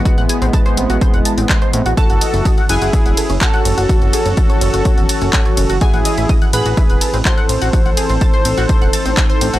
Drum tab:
RD |----------------|x-x-x-x-x-x-x-x-|x-x-x-x-x-x-x-x-|x-x-x-x-x-x-x-x-|
HH |xxxxxxxxxxxxxxxx|xxxxxxxxxxxxxxxx|xxxxxxxxxxxxxxxx|xxxxxxxxxxxxxxxx|
CP |------------x---|------------x---|------------x---|------------x---|
BD |o---o---o---o---|o---o---o---o---|o---o---o---o---|o---o---o---o---|

RD |x-x-x-x-x-x-x-x-|
HH |xxxxxxxxxxxxxxxx|
CP |------------x---|
BD |o---o---o---o---|